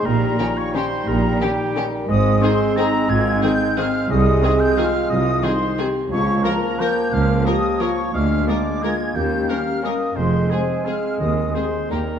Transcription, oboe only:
X:1
M:3/4
L:1/8
Q:1/4=176
K:Ab
V:1 name="Oboe"
B3 d c2 | B2 G3 z | e2 c2 b2 | a2 g2 f2 |
e3 g f2 | e2 c3 z | d2 B2 g2 | f2 e2 d2 |
f2 =d2 a2 | g2 f2 e2 | c2 A2 f2 | e2 c2 B2 |]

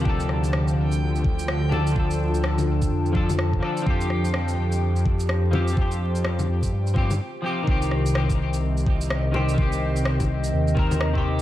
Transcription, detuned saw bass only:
X:1
M:4/4
L:1/8
Q:"Swing 16ths" 1/4=126
K:Cdor
V:1 name="Detuned saw bass" clef=bass
D,,3 D,,4- D,, | D,,3 D,, F,,3 z | F,,3 F,,4- F,, | F,,3 F,, G,,2 z2 |
C,,3 C,,4- C,, | C,,3 C,, E,,2 E,,2 |]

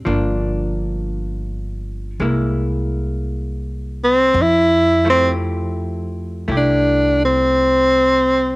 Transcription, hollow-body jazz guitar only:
X:1
M:4/4
L:1/8
Q:"Swing" 1/4=56
K:F
V:1 name="Hollow-body jazz guitar"
[F,B,D]4 [^G,B,E]4 | z [F,A,EG]3 [A,EG]4 |]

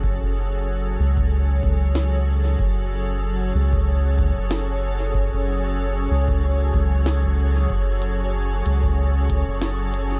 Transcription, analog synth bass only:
X:1
M:4/4
L:1/16
Q:"Swing 16ths" 1/4=94
K:F#m
V:1 name="Analog synth bass" clef=bass
F,,, F,,,4- F,,, C,,4 C,,6 | F,,,6 C,,4- C,, F,,,4- F,,,- | F,,, F,,,4- F,,, C,,4 C,,6 | F,,,6 C,,4- C,, F,,,4- F,,, |]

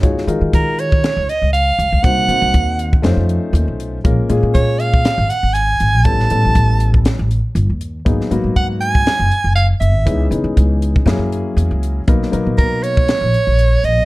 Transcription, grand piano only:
X:1
M:4/4
L:1/8
Q:"Swing 16ths" 1/4=120
K:Ebm
V:1 name="Grand piano"
[A,EFGd] [A,EFGB]4 z3 | [B,=CEG=c] [B,CEGc]3 [=A,DEFc]4 | [A,B,DFB] [A,B,DFA]4 z3 | [=G,=B,^C=E=A] [G,B,CEA]4 z3 |
[G,B,CEA] [G,B,CEG]4 z3 | [_F,CDEA] [F,CDEA]3 [G,B,D_FA]4 | [^F,^A,=B,^D^A] [F,A,B,DA]4 z3 |]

